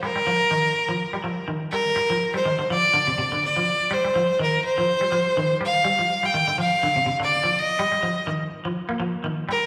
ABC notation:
X:1
M:4/4
L:1/16
Q:"Swing 16ths" 1/4=124
K:Gm
V:1 name="Fiddle"
B12 z2 B2- | B3 c3 d6 d4 | c4 B2 c8 f2- | f3 g3 f4- f d3 e2- |
e4 z8 z2 B2 |]
V:2 name="Clean electric guitar" clef=bass
G, G, F,2 E,2 z F,2 G, F,2 E,2 G,2 | z F,2 G, E, D, F,2 D, C, C, D,2 F,2 z | G, G, F,2 E,2 z F,2 G, F,2 E,2 G,2 | G, F,2 G, E, D, F,2 D, C, C, D,2 F,2 z |
G, G, F,2 E,2 z F,2 B, F,2 E,2 G,2 |]